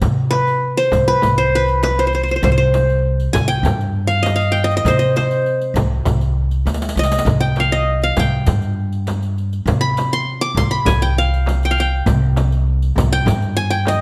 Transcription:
0.01 0.89 C3 medium
0.01 riq medium
0.01 frame drum medium
0.01 darbuka dum medium
0.19 darbuka ka soft
0.31 0.83 B4 medium
0.31 darbuka tek medium
0.31 frame drum medium
0.47 riq soft
0.63 darbuka ka soft
0.77 1.14 C5 medium
0.77 riq soft
0.92 1.21 C2 medium
0.92 riq medium
0.92 frame drum medium
0.92 darbuka dum medium
1.08 1.44 B4 medium
1.22 2.40 C2 medium
1.22 riq medium
1.22 frame drum medium
1.22 darbuka dum medium
1.38 1.61 C5 medium
1.38 riq soft
1.38 darbuka ka soft
1.55 1.83 B4 medium
1.68 riq soft
1.83 2.05 B4 medium
1.83 riq soft
1.83 darbuka tek medium
1.83 frame drum medium
1.98 2.07 C5 medium
1.98 riq soft
2.07 2.14 C5 medium
2.13 2.23 C5 medium
2.13 riq soft
2.23 2.31 C5 soft
2.28 2.36 C5 medium
2.28 riq soft
2.36 2.43 C5 medium
2.43 3.30 C2 loud
2.43 2.51 C5 medium
2.43 riq soft
2.43 frame drum medium
2.43 darbuka dum medium
2.52 2.57 C5 medium
2.58 3.63 C5 medium
2.58 darbuka ka soft
2.74 riq soft
2.74 darbuka tek medium
2.74 frame drum medium
2.89 riq soft
3.05 darbuka ka soft
3.20 riq soft
3.20 darbuka ka soft
3.33 3.62 C2 medium
3.33 3.54 G#5 medium
3.33 riq medium
3.33 darbuka dum medium
3.33 frame drum medium
3.48 4.31 G5 loud
3.63 4.81 G2 loud
3.63 riq medium
3.63 darbuka dum medium
3.63 frame drum medium
3.80 riq soft
3.80 darbuka ka soft
4.07 4.35 F5 medium
4.07 riq soft
4.23 4.64 D#5 medium
4.23 riq soft
4.23 darbuka tek medium
4.23 frame drum medium
4.36 5.24 F5 medium
4.41 riq soft
4.52 5.35 G5 medium
4.56 riq soft
4.64 4.76 D#5 medium
4.71 riq soft
4.77 4.99 D#5 medium
4.85 5.72 C3 medium
4.85 5.16 C5 medium
4.85 riq medium
4.85 darbuka dum medium
4.85 frame drum medium
4.99 5.94 D#5 medium
4.99 riq soft
4.99 darbuka ka soft
5.16 6.42 C5 medium
5.16 riq soft
5.16 darbuka tek medium
5.16 frame drum medium
5.31 riq soft
5.46 riq soft
5.61 riq soft
5.74 6.04 C2 medium
5.74 riq medium
5.74 darbuka dum medium
5.74 frame drum medium
6.05 6.63 C2 medium
6.05 riq medium
6.05 frame drum medium
6.05 darbuka dum medium
6.21 riq soft
6.21 darbuka ka soft
6.51 riq soft
6.51 darbuka ka soft
6.66 6.93 D2 medium
6.66 riq medium
6.66 darbuka tek medium
6.66 frame drum medium
6.74 riq medium
6.82 riq medium
6.89 riq medium
6.95 7.23 C2 medium
6.95 7.72 D#5 medium
6.95 riq medium
7.03 riq medium
7.12 riq medium
7.19 riq medium
7.25 8.12 C2 medium
7.25 riq medium
7.25 frame drum medium
7.25 darbuka dum medium
7.40 8.19 G5 medium
7.40 darbuka ka soft
7.56 8.03 F5 medium
7.56 riq soft
7.56 darbuka tek medium
7.56 frame drum medium
7.72 8.67 D#5 medium
7.72 riq soft
7.89 darbuka ka soft
8.02 8.92 F5 medium
8.02 riq soft
8.17 8.45 C2 medium
8.17 9.23 G5 medium
8.17 riq medium
8.17 frame drum medium
8.17 darbuka dum medium
8.46 9.63 G2 loud
8.46 riq medium
8.46 frame drum medium
8.46 darbuka dum medium
8.62 riq soft
8.62 darbuka ka soft
8.92 riq soft
8.92 darbuka ka soft
9.07 riq soft
9.07 darbuka tek medium
9.07 frame drum medium
9.23 riq soft
9.38 riq soft
9.38 darbuka ka soft
9.53 riq soft
9.53 darbuka ka soft
9.66 10.53 C3 medium
9.66 riq medium
9.66 frame drum medium
9.66 darbuka dum medium
9.81 10.19 B5 medium
9.81 darbuka ka soft
9.97 riq soft
9.97 darbuka tek medium
9.97 frame drum medium
10.12 10.57 C6 medium
10.12 riq soft
10.28 darbuka ka soft
10.41 11.06 D6 loud
10.41 riq soft
10.41 darbuka ka soft
10.55 10.84 C2 medium
10.55 10.77 C6 medium
10.55 riq medium
10.55 darbuka dum medium
10.55 frame drum medium
10.71 11.43 B5 medium
10.85 12.02 C2 medium
10.85 11.08 G#5 medium
10.85 riq medium
10.85 darbuka dum medium
10.85 frame drum medium
11.02 11.65 G5 medium
11.02 riq soft
11.18 11.71 F5 medium
11.31 riq soft
11.31 darbuka ka soft
11.46 riq soft
11.46 darbuka tek medium
11.46 frame drum medium
11.63 11.80 G5 medium
11.63 riq soft
11.71 12.60 F5 medium
11.77 12.63 G5 medium
11.77 riq soft
11.77 darbuka ka soft
11.91 darbuka ka soft
12.06 12.93 C2 loud
12.06 riq medium
12.06 darbuka dum medium
12.06 frame drum medium
12.22 darbuka ka soft
12.36 riq soft
12.36 darbuka tek medium
12.36 frame drum medium
12.52 riq soft
12.66 darbuka ka soft
12.82 riq soft
12.96 13.25 C2 medium
12.96 riq medium
12.96 darbuka dum medium
12.96 frame drum medium
13.13 13.63 G5 loud
13.26 14.01 G2 loud
13.26 riq medium
13.26 darbuka dum medium
13.26 frame drum medium
13.42 riq soft
13.57 13.76 G#5 loud
13.70 14.01 G5 medium
13.70 riq soft
13.85 14.01 D#5 medium
13.85 riq soft
13.85 darbuka tek medium
13.85 frame drum medium

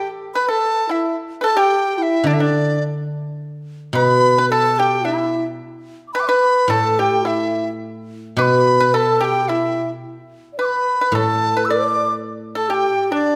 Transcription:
0.35 0.52 B4 medium
0.35 0.48 B4 medium
0.35 0.51 B5 medium
0.48 0.86 A4 medium
0.48 0.89 A4 medium
0.48 0.93 A5 medium
0.89 1.15 E4 medium
0.89 1.17 E5 medium
1.41 1.57 A4 medium
1.41 1.56 A4 medium
1.41 1.44 B4 medium
1.41 1.60 A5 medium
1.56 1.99 G4 medium
1.56 2.22 G4 medium
1.56 1.98 G5 medium
1.98 2.27 E4 medium
1.98 2.03 G5 medium
2.02 2.28 E5 medium
2.24 3.94 D3 medium
2.24 2.39 D4 medium
2.24 2.35 D5 medium
2.34 2.43 E5 medium
2.39 2.79 D4 medium
2.39 2.83 D5 medium
3.93 5.58 B2 medium
3.93 4.52 B4 medium
3.93 4.34 B4 medium
3.93 4.46 B5 medium
4.38 4.50 B4 medium
4.50 4.79 A4 medium
4.50 4.76 A4 medium
4.50 4.76 A5 loud
4.76 5.06 G4 medium
4.76 5.04 G4 medium
4.76 5.06 G5 medium
4.76 4.80 A5 medium
5.05 5.46 E4 medium
5.05 5.43 E4 medium
5.05 5.46 E5 medium
6.08 6.13 D6 soft
6.13 6.27 B4 medium
6.13 6.19 A5 soft
6.13 6.15 B5 soft
6.13 6.21 B5 medium
6.19 6.26 E5 soft
6.19 6.22 G5 soft
6.19 6.30 D6 medium
6.26 6.67 B4 medium
6.26 6.73 B4 medium
6.26 6.29 D5 medium
6.26 6.72 B5 medium
6.68 8.38 A2 medium
6.68 6.96 A4 medium
6.68 7.00 A4 medium
6.68 7.01 A5 loud
6.99 7.29 G4 medium
6.99 7.25 G4 medium
6.99 7.28 G5 medium
7.25 7.65 E4 medium
7.25 7.69 E4 medium
7.25 7.69 E5 medium
8.37 10.03 B2 medium
8.37 8.78 B4 medium
8.37 8.95 B4 medium
8.37 8.43 D6 medium
8.42 8.92 B5 medium
8.80 8.94 B4 medium
8.92 9.24 A4 medium
8.92 9.20 A4 medium
8.92 8.98 B5 medium
8.97 9.20 A5 loud
9.20 9.47 G4 medium
9.20 9.43 G4 medium
9.20 9.26 A5 medium
9.25 9.50 G5 medium
9.44 9.51 G4 soft
9.48 9.91 E4 medium
9.48 9.88 E4 medium
9.48 9.90 E5 medium
10.53 10.60 D5 medium
10.58 10.99 B4 medium
10.58 10.98 B4 medium
10.58 10.66 D6 medium
10.65 11.17 B5 medium
10.99 11.15 B4 medium
10.99 11.14 B4 medium
11.12 12.82 A2 medium
11.12 11.71 A4 medium
11.12 11.54 A4 medium
11.12 11.67 A5 loud
11.57 11.70 B4 medium
11.65 11.75 E6 medium
11.70 12.13 D5 medium
11.70 12.10 D5 medium
11.70 12.15 D6 medium
12.55 12.69 A4 medium
12.55 12.70 A4 medium
12.55 12.71 A5 medium
12.69 13.13 G4 medium
12.69 13.09 G4 medium
12.69 12.75 A5 medium
12.74 13.13 G5 medium
13.11 13.36 D4 medium
13.11 13.36 D5 medium

